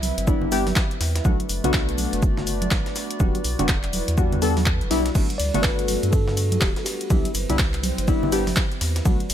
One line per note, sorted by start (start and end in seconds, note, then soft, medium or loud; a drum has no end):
0.00 0.12 C2 loud
0.00 1.21 G3 medium
0.00 1.23 C4 medium
0.00 1.23 E4 medium
0.00 7.06 B4 medium
0.00 1.23 E5 medium
0.00 open hi-hat loud
0.00 high conga medium
0.00 shaker medium
0.18 0.72 G1 loud
0.18 closed hi-hat medium
0.18 closed hi-hat soft
0.27 0.49 G3 medium
0.27 0.50 B3 medium
0.27 0.50 D4 medium
0.27 0.50 E4 loud
0.27 kick loud
0.27 shaker medium
0.41 low conga medium
0.52 0.64 G3 loud
0.52 0.64 B3 medium
0.52 0.64 D4 medium
0.52 0.64 G4 loud
0.52 open hi-hat loud
0.52 shaker medium
0.67 snare soft
0.67 open hi-hat medium
0.67 high conga medium
0.76 kick loud
0.76 snare loud
0.76 clap loud
0.76 shaker medium
0.91 closed hi-hat soft
1.01 1.20 E2 medium
1.01 snare soft
1.01 open hi-hat loud
1.01 open hi-hat medium
1.16 snare medium
1.16 closed hi-hat medium
1.25 1.36 B1 loud
1.25 1.37 A3 medium
1.25 3.18 A3 medium
1.25 1.37 B3 medium
1.25 3.18 D4 medium
1.25 1.37 D4 medium
1.25 7.06 F#4 medium
1.25 1.37 F#4 medium
1.25 5.11 D5 medium
1.25 kick loud
1.25 high conga loud
1.25 shaker medium
1.40 closed hi-hat medium
1.49 1.60 F#1 medium
1.49 open hi-hat loud
1.49 shaker medium
1.64 2.07 B1 loud
1.64 3.18 A3 medium
1.64 3.18 B3 medium
1.64 3.18 D4 medium
1.64 3.18 F#4 loud
1.64 closed hi-hat medium
1.64 low conga medium
1.73 kick loud
1.73 snare loud
1.73 clap loud
1.73 shaker medium
1.89 closed hi-hat soft
1.89 closed hi-hat medium
1.98 open hi-hat loud
1.98 high conga medium
1.98 shaker medium
2.13 2.67 F#1 loud
2.13 closed hi-hat soft
2.13 closed hi-hat medium
2.23 kick loud
2.23 shaker medium
2.37 snare medium
2.37 low conga medium
2.47 open hi-hat loud
2.47 shaker medium
2.62 closed hi-hat medium
2.62 high conga medium
2.71 2.82 A1 loud
2.71 kick loud
2.71 snare loud
2.71 clap loud
2.71 shaker medium
2.86 snare soft
2.86 closed hi-hat soft
2.96 snare soft
2.96 open hi-hat loud
2.96 shaker medium
3.11 closed hi-hat medium
3.20 3.31 E1 loud
3.20 3.38 G3 medium
3.20 7.06 G3 medium
3.20 3.38 B3 medium
3.20 3.38 D4 medium
3.20 5.13 E4 medium
3.20 3.38 F#4 medium
3.20 kick loud
3.20 high conga loud
3.20 shaker medium
3.35 closed hi-hat medium
3.35 closed hi-hat soft
3.44 3.56 B1 medium
3.44 open hi-hat loud
3.44 shaker medium
3.59 4.02 E1 loud
3.59 3.73 G3 medium
3.59 3.73 B3 medium
3.59 3.73 D4 medium
3.59 3.73 F#4 medium
3.59 closed hi-hat medium
3.59 low conga medium
3.68 kick loud
3.68 snare loud
3.68 clap loud
3.68 shaker medium
3.83 clap soft
3.83 closed hi-hat medium
3.93 open hi-hat loud
3.93 high conga medium
3.93 shaker medium
4.08 4.83 E2 loud
4.08 closed hi-hat medium
4.08 closed hi-hat soft
4.18 4.40 G3 medium
4.18 4.40 B3 medium
4.18 4.40 D4 medium
4.18 4.40 F#4 loud
4.18 kick loud
4.18 shaker medium
4.32 closed hi-hat soft
4.32 low conga medium
4.42 4.54 G3 medium
4.42 4.54 B3 medium
4.42 4.54 D4 medium
4.42 4.54 A4 loud
4.42 open hi-hat loud
4.42 shaker medium
4.57 snare soft
4.57 open hi-hat medium
4.57 high conga medium
4.66 kick loud
4.66 clap loud
4.66 shaker medium
4.81 4.88 E1 loud
4.81 closed hi-hat soft
4.91 5.10 B1 loud
4.91 5.03 G3 medium
4.91 5.03 B3 medium
4.91 5.03 D4 medium
4.91 5.03 E4 loud
4.91 snare soft
4.91 open hi-hat loud
4.91 open hi-hat medium
5.06 snare medium
5.06 closed hi-hat medium
5.15 5.26 G1 loud
5.15 5.27 A3 medium
5.15 5.27 B3 medium
5.15 7.08 D4 medium
5.15 5.27 D4 medium
5.15 5.27 F#4 medium
5.15 7.08 A4 medium
5.15 kick loud
5.15 ride medium
5.15 crash medium
5.15 high conga medium
5.15 shaker medium
5.30 closed hi-hat medium
5.38 5.51 D2 medium
5.38 5.64 D5 loud
5.38 open hi-hat loud
5.38 ride medium
5.38 shaker medium
5.54 5.97 G1 loud
5.54 7.08 A3 medium
5.54 7.08 B3 medium
5.54 7.08 D4 medium
5.54 7.08 F#4 loud
5.54 closed hi-hat medium
5.54 low conga medium
5.62 6.13 B4 loud
5.62 kick loud
5.62 snare loud
5.62 clap loud
5.62 ride medium
5.62 shaker medium
5.79 closed hi-hat soft
5.79 closed hi-hat medium
5.88 open hi-hat loud
5.88 ride medium
5.88 high conga medium
5.88 shaker medium
6.03 6.58 G2 loud
6.03 closed hi-hat medium
6.03 closed hi-hat soft
6.11 6.57 A4 loud
6.11 kick loud
6.11 ride medium
6.11 shaker medium
6.28 snare soft
6.28 low conga medium
6.37 open hi-hat loud
6.37 ride medium
6.37 shaker medium
6.52 closed hi-hat medium
6.52 high conga medium
6.60 6.73 D1 loud
6.60 6.69 G4 medium
6.60 kick loud
6.60 snare loud
6.60 clap loud
6.60 ride medium
6.60 shaker medium
6.76 6.85 A4 medium
6.76 snare soft
6.76 closed hi-hat soft
6.85 7.31 G4 medium
6.85 snare soft
6.85 open hi-hat loud
6.85 ride medium
6.85 shaker medium
7.01 closed hi-hat medium
7.10 7.21 C2 loud
7.10 7.28 G3 medium
7.10 9.04 G3 medium
7.10 7.28 B3 medium
7.10 9.04 C4 medium
7.10 7.28 D4 medium
7.10 9.04 E4 medium
7.10 7.28 E4 medium
7.10 9.34 B4 medium
7.10 9.04 C5 medium
7.10 kick loud
7.10 ride medium
7.10 high conga loud
7.10 shaker medium
7.25 closed hi-hat soft
7.25 closed hi-hat medium
7.35 7.46 G1 medium
7.35 open hi-hat loud
7.35 ride medium
7.35 shaker medium
7.49 7.92 C2 loud
7.49 7.63 G3 medium
7.49 7.63 B3 medium
7.49 7.63 D4 medium
7.49 7.63 E4 medium
7.49 closed hi-hat medium
7.49 low conga medium
7.59 kick loud
7.59 snare loud
7.59 clap loud
7.59 ride medium
7.59 shaker medium
7.74 clap soft
7.74 closed hi-hat medium
7.83 open hi-hat loud
7.83 ride medium
7.83 high conga medium
7.83 shaker medium
7.98 8.53 G1 loud
7.98 closed hi-hat soft
7.98 closed hi-hat medium
8.08 8.30 G3 medium
8.08 8.30 B3 medium
8.08 8.30 D4 medium
8.08 8.30 E4 loud
8.08 kick loud
8.08 ride medium
8.08 shaker medium
8.23 low conga loud
8.32 8.44 G3 medium
8.32 8.44 B3 medium
8.32 8.44 D4 medium
8.32 8.44 G4 loud
8.32 open hi-hat loud
8.32 ride medium
8.32 shaker medium
8.47 snare soft
8.47 open hi-hat medium
8.47 high conga medium
8.56 kick loud
8.56 snare loud
8.56 clap loud
8.56 ride medium
8.56 shaker medium
8.72 closed hi-hat soft
8.81 9.01 E2 medium
8.81 snare soft
8.81 open hi-hat medium
8.81 open hi-hat loud
8.81 ride medium
8.96 snare medium
8.96 closed hi-hat medium
9.05 9.16 B1 loud
9.05 9.17 A3 medium
9.05 9.34 A3 medium
9.05 9.17 B3 medium
9.05 9.17 D4 medium
9.05 9.34 D4 medium
9.05 9.17 F#4 medium
9.05 9.34 F#4 medium
9.05 9.34 D5 medium
9.05 kick loud
9.05 ride medium
9.05 high conga loud
9.05 shaker medium
9.20 closed hi-hat medium
9.30 9.34 F#1 medium
9.30 open hi-hat loud
9.30 ride medium
9.30 shaker medium